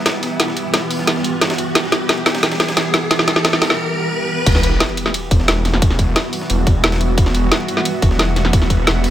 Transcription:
Already playing: synth drone E3 B3 G4, ambient pad G3 B3 E5 F#5, riser
0.06 snare, closed hi-hat, ride
0.23 snare, closed hi-hat, ride
0.40 snare, closed hi-hat, ride
0.48 snare
0.57 closed hi-hat, ride
0.74 snare, closed hi-hat, ride
0.91 closed hi-hat, open hi-hat
0.99 snare
1.07 snare, closed hi-hat, ride
1.16 snare
1.24 closed hi-hat, ride
1.41 snare, closed hi-hat, ride
1.50 snare, ride
1.58 closed hi-hat, ride
1.75 snare, closed hi-hat, ride
1.84 snare
1.92 snare, closed hi-hat, ride
2.09 snare, closed hi-hat, ride
2.18 ride
2.26 snare, closed hi-hat, ride
2.35 snare, ride
2.43 snare, closed hi-hat, ride
2.51 snare, ride
2.60 snare, closed hi-hat, ride
2.68 snare, ride
2.77 snare, closed hi-hat, ride
2.94 snare, closed hi-hat, ride
3.11 snare, closed hi-hat, ride
3.19 snare
3.28 snare, closed hi-hat, ride
3.36 snare
3.45 snare, closed hi-hat, ride
3.53 snare
3.62 snare, closed hi-hat, open hi-hat
3.70 snare
4.46 detuned saw bass E1, synth drone E3 B3 F#4, ambient pad B3, kick, closed hi-hat, crash, ride, sub drop
4.55 snare
4.60 ambient pad G3, closed hi-hat, ride
4.80 ambient pad E5, snare, closed hi-hat, ride
4.89 ride
4.97 closed hi-hat, ride
5.06 snare
5.14 closed hi-hat, ride
5.31 detuned saw bass E1, kick, closed hi-hat, ride
5.40 snare
5.48 snare, closed hi-hat, ride
5.63 ambient pad F#5, snare, closed hi-hat, ride
5.74 snare
5.82 detuned saw bass E1, kick, closed hi-hat, ride
5.90 snare
5.99 kick, closed hi-hat, ride
6.16 snare, closed hi-hat, ride
6.33 closed hi-hat, open hi-hat
6.41 snare
6.50 detuned saw bass E1, closed hi-hat, ride
6.67 detuned saw bass E1, kick, closed hi-hat, ride
6.84 snare, closed hi-hat, ride
6.92 snare, ride
7.01 closed hi-hat, ride
7.18 detuned saw bass E1, kick, closed hi-hat, ride
7.26 snare
7.35 closed hi-hat, ride
7.52 snare, closed hi-hat, ride
7.60 ride
7.68 closed hi-hat, ride
7.77 snare
7.85 closed hi-hat, ride
8.02 detuned saw bass E1, kick, closed hi-hat, ride
8.11 snare
8.19 snare, closed hi-hat, ride
8.36 snare, closed hi-hat, ride
8.45 snare
8.53 detuned saw bass E1, kick, closed hi-hat, ride
8.62 snare
8.70 kick, closed hi-hat, ride
8.87 detuned saw bass E1, snare, closed hi-hat, ride
9.04 closed hi-hat, open hi-hat

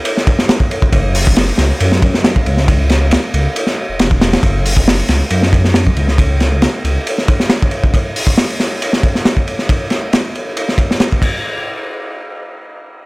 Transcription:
0.05 ride
0.17 snare
0.27 kick, ride
0.39 snare
0.49 snare, ride
0.60 kick
0.71 ride
0.82 kick
0.92 detuned saw bass F#1, kick, ride
1.15 open hi-hat
1.27 kick
1.36 snare, ride
1.49 ride
1.58 detuned saw bass C#2, snare, ride
1.80 detuned saw bass F#2, ride
1.92 snare
2.02 kick, ride
2.14 snare
2.24 snare, ride
2.36 kick
2.46 detuned saw bass C#2, ride
2.57 snare
2.68 kick, ride
2.90 snare, ride
3.11 snare, ride
3.34 detuned saw bass C#2, ride
3.56 ride
3.67 snare
3.89 detuned saw bass E1
3.99 detuned saw bass E1, snare, ride
4.11 kick
4.21 snare, ride
4.33 snare, ride
4.43 detuned saw bass F#1, kick, ride
4.66 open hi-hat
4.77 kick
4.88 snare, ride
4.99 ride
5.09 detuned saw bass C#2, snare, ride
5.30 detuned saw bass F#2, ride
5.42 snare
5.53 kick, ride
5.65 snare
5.74 snare, ride
5.87 kick
5.96 detuned saw bass C#2, ride
6.08 snare
6.18 kick, ride
6.40 snare, ride
6.62 snare, ride
6.84 detuned saw bass C#2, ride
7.07 ride
7.18 snare
7.28 kick, ride
7.40 snare
7.50 snare, ride
7.62 kick
7.71 ride
7.84 kick
7.94 kick, ride
8.16 open hi-hat
8.27 kick
8.38 snare, ride
8.50 ride
8.60 snare, ride
8.82 ride
8.93 snare
9.03 kick, ride
9.15 snare
9.25 snare, ride
9.37 kick
9.48 ride
9.59 snare
9.69 kick, ride
9.90 snare, ride
10.13 snare, ride
10.35 ride
10.57 ride
10.69 snare
10.78 kick, ride
10.91 snare
11.00 snare, ride
11.12 kick
11.22 kick, crash

